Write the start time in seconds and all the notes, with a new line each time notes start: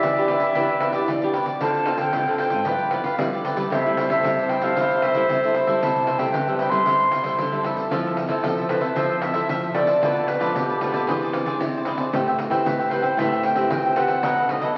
Already playing: B3 D4 G4 B4 D5 E5
0.03 B2 E3, pandeiro
0.16 B3 D4 G4 B4 D5, pandeiro
0.27 E4 G4 B4 D5 E5, pandeiro
0.40 E3 G4 B4 D5, pandeiro
0.54 E3 B3 D4 E4 G4 B4 D5, pandeiro
0.69 pandeiro
0.80 E4 G4 B4 D5, pandeiro
0.92 B3 D4 E4 G4 B4 D5, pandeiro
1.08 B2 E3, pandeiro
1.21 B3 D4 G4 B4 D5, pandeiro
1.33 E4 G4 B4 D5, pandeiro
1.45 G4 B4 D5, pandeiro
1.60 D3 C4 D4 F4 A4 C5 F5 A5, pandeiro
1.75 pandeiro
1.86 C4 D4 F4 A4 C5 F5, pandeiro
1.98 D3 A4 C5 F5 G5, pandeiro
2.13 A2 D3 C4 F4 A4, pandeiro
2.27 C4 F4 A4 C5 F5, pandeiro
2.38 D4 A4 C5 F5 G5, pandeiro
2.50 G#2 A4 C5 F5, pandeiro
2.65 G2 F3 B3 E4 F4 G4 B4 D5, pandeiro
2.79 pandeiro
2.91 F3 B3 E4 F4 G4 B4 D5, pandeiro
3.03 F4 G4 B4 D5 F5, pandeiro
3.18 D3 F3 G3 B3 E4 A4, pandeiro
3.33 G4 B4 D5, pandeiro
3.44 F4 G4 B4 D5, pandeiro
3.57 G3 A3 E4 G4 B4 D5, pandeiro
3.70 C3 E4 A4 C5 E5, pandeiro
3.75 E5
3.86 G3 A3 E4, pandeiro
3.97 E4 A4 C5 E5, pandeiro
4.08 C3 C5 E5, pandeiro
4.13 A4
4.23 G2 C3 G3 A3 E4, pandeiro
4.39 A4 C5 E5, pandeiro
4.49 E4 A4 C5 G5, pandeiro
4.53 E5
4.62 C3 G3 A3 E4 C5 E5 F5, pandeiro
4.66 A4
4.76 C3 G3 A3 E4 A4, pandeiro
4.81 C5 E5
4.91 pandeiro
5.02 E4 A4 C5 E5, pandeiro
5.14 G3 A3 E4 A4 C5 E5, pandeiro
5.29 G2 C3, pandeiro
5.43 G3 A3 E4 A4 C5 E5, pandeiro
5.54 E4 A4 C5 E5, pandeiro
5.67 G3 A3 E4 A4 C5 E5, pandeiro
5.81 C3 G3 A3 E4 A4 C5 E5 A5, pandeiro
5.96 pandeiro
6.07 E4 A4 C5 E5, pandeiro
6.18 C3 G3 A3 E4 A4 C5 E5 G5, pandeiro
6.33 G2 C3 B4, pandeiro
6.48 G3 A3 E4 A4 C5 E5, pandeiro
6.57 E4 A4 G5, pandeiro
6.62 C5 E5
6.70 C3 G3 A3 E4 C5 E5 C6, pandeiro
6.74 A4
6.86 C3 G3 A3 E4 A4 C5 E5, pandeiro
7.00 pandeiro
7.11 C3 E4 A4 C5 E5, pandeiro
7.24 G3 A3 E4 A4 C5 E5, pandeiro
7.38 G2 D3 A4, pandeiro
7.52 G3 A3 E4 A4 C5 E5, pandeiro
7.63 E3 E4 A4 C5 E5, pandeiro
7.75 A4 C5 E5, pandeiro
7.91 F3 C4 E4 F4 A4 C5 E5, pandeiro
8.06 A4 C5 E5, pandeiro
8.17 muted cavaquinho stroke, pandeiro
8.28 C3 C4 E4 A4 C5 E5, pandeiro
8.32 A4
8.43 C3 F3 A4, pandeiro
8.58 A4 C5 E5, pandeiro
8.69 C4 E4 F4 A4 B4 C5 E5, pandeiro
8.81 C3 A4 C5 E5, pandeiro
8.96 F3 C4 E4 F4 A4 C5 E5, pandeiro
9.10 A4 C5 E5, pandeiro
9.22 E5, pandeiro
9.33 C4 E4 A4 C5 E5, pandeiro
9.49 C3 F3 E5, muted cavaquinho stroke, pandeiro
9.63 A4 C5 E5, pandeiro
9.74 C4 E4 F4 A4 C5 D5 E5, pandeiro
9.87 A4 C5 E5, pandeiro
10.01 B2 A3 D4 F4 A4 B4 D5, pandeiro
10.16 A4 B4 D5, pandeiro
10.28 B4, muted cavaquinho stroke, pandeiro
10.39 F3 A3 D4 F4 A4 B4 D5, pandeiro
10.54 B2 G4, pandeiro
10.69 A4 B4 D5, pandeiro
10.80 A3 D4 F4 A4 B4 D5, pandeiro
10.92 B2 A4 B4 D5, pandeiro
11.07 E3 C4 D4 E4 G#4 C5 D5, pandeiro
11.22 G#4 C5 D5, pandeiro
11.33 pandeiro
11.45 C4 D4 G#4 C5 D5, pandeiro
11.60 C3 E3, muted cavaquinho stroke, pandeiro
11.74 G#4 C5 D5, pandeiro
11.85 C4 D4 E4 G#4 C5 D5, pandeiro
11.98 G#4 C5 D5, pandeiro
12.13 A2 A3 C4 G4 A4 B4 C5 E5 G5, pandeiro
12.27 C5 E5 G5, pandeiro
12.38 muted cavaquinho stroke, pandeiro
12.50 E3 C4 G4 B4 C5 E5 G5, pandeiro
12.65 A2 E3 B4, pandeiro
12.79 C5 E5 G5, pandeiro
12.90 C4 G4 A4 B4 C5 E5 G5, pandeiro
13.01 E3 C5 E5 G5, pandeiro
13.17 A2 A3 C4 G4 A4 B4 C5 E5 G5, pandeiro
13.32 C5 E5 G5, pandeiro
13.43 G5, pandeiro
13.55 C4 G4 B4 C5 E5 G5, pandeiro
13.70 A#2 E3 G5, muted cavaquinho stroke, pandeiro
13.85 C5 E5 G5, pandeiro
13.96 C4 G4 A4 B4 C5 E5 F#5 G5, pandeiro
14.08 C5 E5 G5, pandeiro
14.23 B2 A3 C#4 D#4 A4 B4 D#5, pandeiro
14.37 A4 B4 D#5, pandeiro
14.49 A3 C#4 D#4 D#5, muted cavaquinho stroke, pandeiro
14.61 F#3 A4 B4 D#5, pandeiro